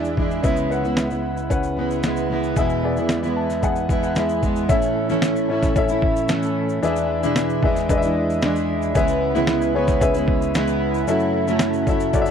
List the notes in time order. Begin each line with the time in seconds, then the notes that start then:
Already playing: E2 E3 G#3 D4 E4 G#4 E5
0.04 shaker
0.17 E3 G#3 D4 E4, kick
0.31 shaker
0.42 C#2 C#3 E3 G#3 B3 C#4 E4 B4 E5, kick, shaker
0.56 shaker
0.70 C#4 B4 F#5, shaker
0.84 G#3 B3 E4, shaker
0.97 snare, shaker
1.10 G#3 B3 E4, shaker
1.37 shaker
1.50 C#4 B4 F#5, kick, shaker
1.63 shaker
1.77 E3 G#3 B3 E4
1.91 shaker
2.03 E3 G#3 B3 E4, snare, shaker
2.16 shaker
2.30 E3 G#3 B3 E4
2.43 shaker
2.56 E2 B2 E3 G#3 B3 E4 G#4 E5, kick, shaker
2.69 shaker
2.83 B3 G#4 D5
2.97 E3 G#3 B3 E4, shaker
3.09 snare, shaker
3.23 E3 G#3 B3 E4, shaker
3.36 A5
3.50 snare, shaker
3.63 B3 G#4 F#5 G#5, kick, shaker
3.76 shaker
3.89 E3 G#3 B3 E4, kick, shaker
4.03 F#5, shaker
4.15 E3 G#3 B3 E4 E5, snare, shaker
4.29 shaker
4.43 E3 G#3 B3 E4, kick, shaker
4.56 shaker
4.68 A2 E3 A3 C#4 E4 A4 E5, kick, shaker
4.82 shaker
5.09 A2 E3 A3 C#4 E4, shaker
5.22 snare, shaker
5.36 shaker
5.48 E3 A3 C#4 E4 A4 C#5
5.63 kick, snare, shaker
5.75 C#4 E4 A4 E5, kick, shaker
5.88 A3 C#4 E4, shaker
6.02 kick
6.16 shaker
6.28 E3 A3 C#4 E4, snare, shaker
6.42 shaker
6.69 shaker
6.83 E2 E3 G#3 D4 E4 G#4 B4 E5, shaker
6.96 shaker
7.23 E2 B2 E3 G#3 D4 E4, shaker
7.36 snare, shaker
7.50 shaker
7.63 E3 G#3 D4 E4 G#4 B4 E5, kick
7.76 snare, shaker
7.89 D4 G#4 B4 D#5, kick, shaker
7.98 E5
8.02 E3 G#3 D4 E4, shaker
8.30 shaker
8.42 E3 G#3 D4 E4, snare, shaker
8.56 shaker
8.82 shaker
8.95 C#2 C#3 E3 G#3 B3 C#4 E4 G#4 B4 E5, kick, shaker
9.08 shaker
9.35 C#3 E3 G#3 B3 E4, shaker
9.47 snare, shaker
9.61 shaker
9.74 E3 G#3 B3 C#4 E4 G#4 B4 C#5
9.88 kick, snare, shaker
10.01 C#4 G#4 B4 E5, kick, shaker
10.14 G#3 B3 E4, shaker
10.28 kick
10.42 shaker
10.54 E3 G#3 B3 E4, snare, shaker
10.67 shaker
10.94 shaker
11.07 F#2 F#3 A3 C#4 E4 F#4 A4 E5, shaker
11.20 shaker
11.47 F#3 A3 C#4 E4, shaker
11.59 snare, shaker
11.73 shaker
11.87 F#3 A3 C#4 E4 F#4 A4 E5, kick, shaker
12.00 shaker
12.13 C#4 F#4 A4 D5, kick, shaker
12.22 E5
12.26 C#4 E4, shaker